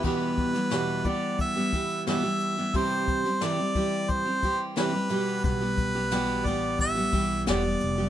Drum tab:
CC |x---------------|----------------|----------------|
SH |--xxx-x-x-xxx-x-|x-x-x-x-x-x-x-x-|x-x-x-x-x-x-x-x-|
SD |---oo-------o---|---oo-------o---|----o-------o---|
BD |o-o---o-o-o-----|o-o---o-o-o-----|o-o---o-o-o-----|